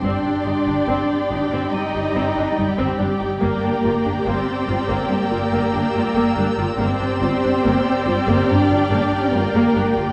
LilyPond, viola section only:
\new Staff \with { instrumentName = "Viola section" } { \time 4/4 \key g \minor \tempo 4 = 71 << { g'1 | g'1 | g'1 | } \\ { c'16 d'16 ees'16 d'16 c'16 r16 ees'16 c'16 r16 ees'16 c'16 d'16 ees'16 c'16 d'16 ees'16 | bes16 d'16 f'16 d'16 bes16 r16 f'16 bes16 r16 f'16 bes16 d'16 f'16 bes16 d'16 f'16 | bes16 d'16 f'16 d'16 bes16 r16 f'16 bes16 r16 f'16 bes16 d'16 f'16 bes16 d'16 f'16 | } >> }